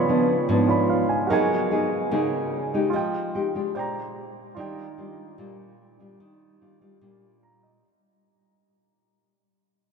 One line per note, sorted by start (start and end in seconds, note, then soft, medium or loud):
0.00 0.47 C#3 medium
0.00 0.66 F4 medium
0.00 0.66 C#5 medium
0.00 0.67 D5 medium
0.00 0.69 B5 medium
0.08 0.35 F3 medium
0.08 0.35 B3 medium
0.08 0.35 D4 medium
0.49 1.28 G#2 medium
0.49 1.04 F3 medium
0.49 1.04 B3 soft
0.49 1.04 D4 medium
0.67 1.29 F4 soft
0.67 1.30 C#5 soft
0.67 1.30 D5 soft
0.67 1.31 B5 soft
0.90 1.09 F5 medium
1.09 1.29 G#5 medium
1.27 2.10 F#3 medium
1.27 2.89 F#4 medium
1.27 2.89 A#4 medium
1.27 2.90 D#5 medium
1.31 1.68 A#3 soft
1.31 1.68 D#4 soft
1.31 1.68 G#4 medium
1.31 2.92 G#5 medium
1.71 1.97 A#3 medium
1.71 1.98 D#4 soft
1.71 1.98 G#4 medium
2.11 2.91 C#3 medium
2.11 2.70 A#3 soft
2.11 2.70 D#4 medium
2.11 2.70 G#4 medium
2.74 3.31 G#3 medium
2.74 3.32 D#4 medium
2.74 3.32 G4 medium
2.90 3.73 F3 medium
2.90 3.72 F4 medium
2.94 3.74 D#5 medium
2.94 3.75 G5 medium
3.35 3.47 G#3 medium
3.35 3.47 D#4 soft
3.35 3.47 G4 medium
3.55 4.33 G#3 medium
3.55 4.33 D4 medium
3.55 4.34 G4 medium
3.75 4.55 A#2 medium
3.75 4.55 C5 medium
3.75 4.55 D5 medium
3.75 4.56 G5 medium
3.79 4.57 A#5 medium
4.55 5.36 D#3 medium
4.55 4.83 G3 medium
4.55 4.83 D4 medium
4.55 7.80 D#4 medium
4.55 7.78 F4 medium
4.55 4.83 F4 medium
4.55 7.79 D5 medium
4.60 7.81 G5 medium
4.98 5.35 G3 medium
4.98 5.35 D4 soft
4.98 5.36 F4 medium
5.38 6.18 A#2 medium
5.38 5.96 G3 medium
5.38 5.96 D4 medium
5.38 5.97 F4 medium
6.00 6.58 G3 medium
6.00 6.58 D4 medium
6.00 6.58 F4 medium
6.20 7.00 D#3 medium
6.61 6.78 G3 medium
6.61 6.78 D4 soft
6.61 6.79 F4 medium
6.81 6.98 G3 medium
6.81 6.99 D4 medium
6.81 6.99 F4 medium
7.01 7.81 A#2 medium
7.01 7.80 G3 medium
7.01 7.80 D4 medium
7.01 7.80 F4 medium
7.43 7.62 A#5 soft
7.63 7.82 D#5 soft